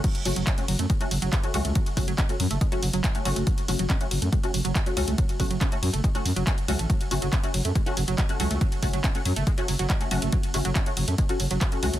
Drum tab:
CC |x---------------|----------------|----------------|----------------|
RD |xxxxxxxxxxxxxxxx|xxxxxxxxxxxxxxxx|xxxxxxxxxxxxxxxx|xxxxxxxxxxxxxxxx|
HH |xxoxxxoxxxoxxxox|xxoxxxoxxxoxxxox|xxoxxxoxxxoxxxox|xxoxxxoxxxoxxxox|
CP |----x-------x---|----x-------x---|----x-------x---|----x-------x---|
BD |o---o---o---o---|o-o-o---o---o---|o---o---o---o---|o-o-o---o---o---|

CC |----------------|----------------|----------------|
RD |xxxxxxxxxxxxxxxx|xxxxxxxxxxxxxxxx|xxxxxxxxxxxxxxxx|
HH |xxoxxxoxxxoxxxox|xxoxxxoxxxoxxxox|xxoxxxoxxxoxxxox|
CP |----x-------x---|----x-------x---|----x-------x---|
BD |o---o---o---o---|o-o-o---o---o---|o---o---o---o---|